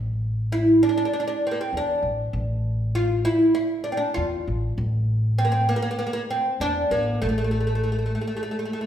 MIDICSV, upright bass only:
0, 0, Header, 1, 2, 480
1, 0, Start_track
1, 0, Tempo, 608519
1, 1849, Time_signature, 4, 2, 24, 8
1, 6991, End_track
2, 0, Start_track
2, 0, Title_t, "Upright bass"
2, 0, Program_c, 0, 32
2, 0, Note_on_c, 0, 33, 91
2, 649, Note_off_c, 0, 33, 0
2, 1363, Note_on_c, 0, 40, 80
2, 1546, Note_off_c, 0, 40, 0
2, 1597, Note_on_c, 0, 33, 77
2, 1783, Note_off_c, 0, 33, 0
2, 1840, Note_on_c, 0, 33, 93
2, 2569, Note_off_c, 0, 33, 0
2, 3288, Note_on_c, 0, 40, 85
2, 3470, Note_off_c, 0, 40, 0
2, 3529, Note_on_c, 0, 33, 80
2, 3711, Note_off_c, 0, 33, 0
2, 3767, Note_on_c, 0, 33, 99
2, 4493, Note_off_c, 0, 33, 0
2, 5206, Note_on_c, 0, 40, 76
2, 5389, Note_off_c, 0, 40, 0
2, 5449, Note_on_c, 0, 33, 79
2, 5630, Note_off_c, 0, 33, 0
2, 5697, Note_on_c, 0, 33, 93
2, 6420, Note_off_c, 0, 33, 0
2, 6991, End_track
0, 0, End_of_file